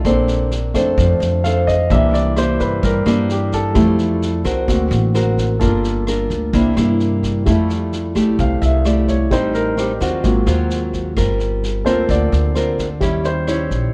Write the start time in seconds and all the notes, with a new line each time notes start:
0.05 A#1 A#3 C4 D4 A4 C5, kick, cross-stick, snare
0.28 snare
0.51 snare
0.74 F2 A3 C4 D4 A4 C5, kick, cross-stick, snare
0.98 F2 F3, kick, snare
1.20 F2, snare
1.44 D4 A4 C5 F5, cross-stick, snare
1.67 D#5, kick, snare
1.90 C2 C3 E3 A#3 D4 E4 G4 E5, kick, snare
2.14 D5, snare
2.36 A#3 E4 G4 C5, cross-stick, snare
2.60 G2 B4, kick, snare
2.83 G2 G3 A#4, kick, snare
3.06 G2 A#3 D4 E4 G4, cross-stick, snare
3.29 G4, snare
3.52 A4, kick, snare
3.75 F2 F3 G3 A3 E4 G4, kick, cross-stick, snare
3.99 snare
4.22 snare
4.44 C2 C4 F#4 A#4, kick, cross-stick, snare
4.68 D2 D3 A#3 C4 F#4, kick, snare
4.91 A1, snare
5.14 C4 F#4 A#4, cross-stick, snare
5.38 kick, snare
5.60 G1 G3 A#3 D4 F4 A4 A#4, kick, snare
5.84 snare
6.07 D4 F4 A#4, cross-stick, snare
6.30 D2, kick, snare
6.53 C2 C3 A#3 D4 E4, kick, snare
6.77 G2 A#3 D4 E4, cross-stick, snare
7.00 snare
7.23 kick, snare
7.45 F2 F3 G3 A3 E4 G4, kick, cross-stick, snare
7.70 snare
7.92 snare
8.15 C2 A3 E4 G4, kick, cross-stick, snare
8.39 C2 C3 F5, kick, snare
8.62 C2 E5, snare
8.85 A3 E4 G4 D5, cross-stick, snare
9.08 C#5, kick, snare
9.31 A1 A2 G3 C4 D#4 C5, kick, snare
9.54 A#4, snare
9.77 G3 C4 D#4 G4, cross-stick, snare
10.00 D#2 F#3 C4 F4 F#4, kick, snare
10.24 G#1 G#2 F#3 A#3 C4 F4, kick, snare
10.46 D#2 F#3 C4 F4, cross-stick, snare
10.70 snare
10.93 kick, snare
11.16 G1 G3 C4 F4 A#4, kick, cross-stick, snare
11.40 snare
11.63 snare
11.85 D2 A#3 C4 F4 A4 A#4 C5, kick, cross-stick, snare
12.09 D2 D3 D5, kick, snare
12.32 D2, snare
12.55 C4 F4 A#4, cross-stick, snare
12.78 kick, snare
13.01 D#2 D#3 G3 C#4 E4 G4, kick, snare
13.24 C5, snare
13.47 C#4 E4 G4 C#5, cross-stick, snare
13.71 A#1, kick, snare